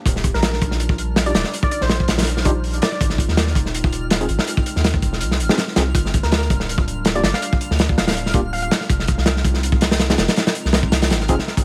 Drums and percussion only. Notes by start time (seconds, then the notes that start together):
0.06 kick, closed hi-hat
0.16 snare
0.24 kick, closed hi-hat
0.34 snare
0.42 snare, closed hi-hat
0.53 snare
0.61 kick, closed hi-hat
0.71 snare
0.80 closed hi-hat
0.89 kick
0.98 closed hi-hat
1.16 snare, closed hi-hat
1.26 closed hi-hat
1.35 snare, closed hi-hat
1.44 snare
1.54 closed hi-hat
1.63 kick
1.71 closed hi-hat
1.81 snare
1.89 snare, closed hi-hat
2.00 kick
2.08 snare, closed hi-hat
2.18 snare, closed hi-hat
2.22 snare, closed hi-hat
2.27 closed hi-hat
2.37 snare
2.45 kick, closed hi-hat
2.64 open hi-hat
2.74 closed hi-hat
2.82 snare, closed hi-hat
2.92 snare
3.01 kick, closed hi-hat
3.10 snare
3.18 kick, closed hi-hat
3.28 snare
3.37 snare, closed hi-hat
3.47 snare
3.55 kick, closed hi-hat
3.66 snare
3.74 closed hi-hat
3.84 kick
3.92 closed hi-hat
4.10 snare, closed hi-hat
4.21 closed hi-hat
4.29 closed hi-hat
4.39 snare
4.47 closed hi-hat
4.57 kick
4.66 closed hi-hat
4.76 snare
4.84 snare, closed hi-hat
4.94 kick
5.02 kick, closed hi-hat
5.13 snare
5.21 closed hi-hat
5.31 snare
5.40 closed hi-hat
5.49 snare
5.58 snare, closed hi-hat
5.67 snare
5.76 snare, closed hi-hat
5.95 kick, closed hi-hat
6.05 snare
6.14 kick, closed hi-hat
6.23 snare
6.32 snare, closed hi-hat
6.41 snare
6.50 kick, closed hi-hat
6.60 snare
6.69 closed hi-hat
6.78 kick
6.88 closed hi-hat
7.05 snare, closed hi-hat
7.15 closed hi-hat
7.23 snare, closed hi-hat
7.33 snare
7.42 closed hi-hat
7.53 kick
7.61 closed hi-hat
7.71 snare
7.79 snare, closed hi-hat
7.89 kick
7.98 snare, closed hi-hat
8.07 snare, closed hi-hat
8.11 snare, closed hi-hat
8.17 closed hi-hat
8.26 snare
8.34 kick, closed hi-hat
8.53 open hi-hat
8.62 closed hi-hat
8.71 snare, closed hi-hat
8.81 snare
8.90 kick, closed hi-hat
8.99 snare
9.07 kick, closed hi-hat
9.18 snare
9.26 snare, closed hi-hat
9.36 snare
9.44 kick, closed hi-hat
9.54 snare
9.63 closed hi-hat
9.72 kick
9.81 snare, closed hi-hat
9.91 snare, closed hi-hat
9.99 snare, closed hi-hat
10.10 snare, closed hi-hat
10.18 snare, closed hi-hat
10.28 snare, closed hi-hat
10.36 snare, closed hi-hat
10.47 snare, closed hi-hat
10.55 closed hi-hat
10.65 snare
10.73 snare, closed hi-hat
10.83 kick
10.92 snare, closed hi-hat
11.02 snare, closed hi-hat
11.10 snare, closed hi-hat
11.20 snare
11.28 kick, closed hi-hat
11.39 snare
11.47 snare
11.57 kick, closed hi-hat